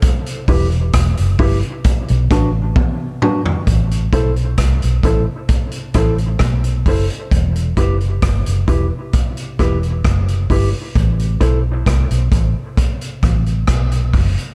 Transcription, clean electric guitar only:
\new Staff \with { instrumentName = "Clean electric guitar" } { \time 4/4 \key a \dorian \tempo 4 = 66 r8 <e' g' b'>8 r8 <e' g' b'>8 r8 <d' fis' b'>8 r8 <d' fis' b'>8 | r8 <e' a' c''>8 r8 <e' a' c''>8 r8 <e' a' c''>8 r8 <e' a' c''>8 | r8 <e' g' b'>8 r8 <e' g' b'>8 r8 <e' g' b'>8 r8 <e' g' b'>8 | r8 <e' a' c''>8 r2. | }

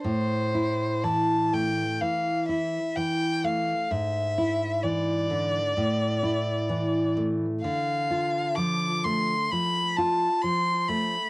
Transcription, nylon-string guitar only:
\new Staff \with { instrumentName = "Nylon-string guitar" } { \clef bass \time 4/4 \key a \minor \tempo 4 = 64 a,8 e'8 e8 a8 e8 e'8 e8 a8 | gis,8 e'8 e8 d8 a,8 e'8 e8 a8 | d8 f'8 f8 a8 f8 f'8 f8 a8 | }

